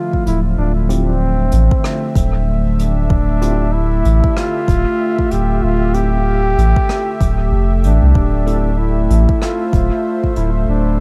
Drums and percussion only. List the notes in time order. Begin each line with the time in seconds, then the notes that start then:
0.13 kick
0.26 closed hi-hat
0.90 closed hi-hat
1.51 closed hi-hat
1.71 kick
1.84 cross-stick
2.15 kick, closed hi-hat
2.79 closed hi-hat
3.10 kick
3.42 closed hi-hat
4.05 closed hi-hat
4.24 kick
4.37 cross-stick
4.68 kick, closed hi-hat
5.19 kick
5.31 closed hi-hat
5.94 closed hi-hat
6.58 closed hi-hat
6.76 kick
6.89 cross-stick
7.21 kick, closed hi-hat
7.84 closed hi-hat
8.15 kick
8.47 closed hi-hat
9.10 closed hi-hat
9.29 kick
9.42 cross-stick
9.73 kick, closed hi-hat
10.24 kick
10.36 closed hi-hat